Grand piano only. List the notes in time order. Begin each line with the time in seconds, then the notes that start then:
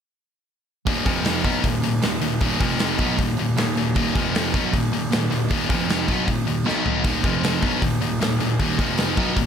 0.87 D#1
1.06 F1
1.44 B1
1.64 D#1
1.81 D#1
2.02 D#1
2.20 D#1
2.41 D#1
2.60 F1
2.98 B1
3.19 D#1
3.38 D#1
3.57 D#1
3.76 D#1
3.96 D#1
4.15 F1
4.54 B1
4.73 D#1
4.92 D#1
5.12 D#1
5.31 D#1
5.51 D#1
5.69 F1
6.08 B1
6.27 D#1
6.47 D#1
6.66 B1
7.04 D#1
7.23 F1
7.62 B1
7.82 D#1
8.01 D#1
8.19 D#1
8.39 D#1
8.59 D#1
8.79 F1
9.17 B1
9.36 D#1